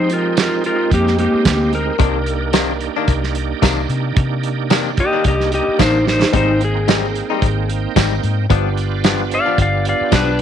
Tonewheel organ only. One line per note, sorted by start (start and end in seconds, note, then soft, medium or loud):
0.00 1.96 G#3 medium
0.00 1.97 C4 medium
0.00 1.97 D#4 medium
0.00 1.97 G4 medium
1.99 6.30 A#3 medium
1.99 6.30 D4 medium
1.99 6.30 D#4 medium
1.99 6.31 G4 medium
6.32 8.46 A#3 medium
6.32 8.46 C4 medium
6.32 8.47 D#4 medium
6.32 8.47 G5 medium
8.49 10.42 B3 medium
8.49 10.42 D4 medium
8.49 10.42 F4 medium
8.49 10.42 G4 medium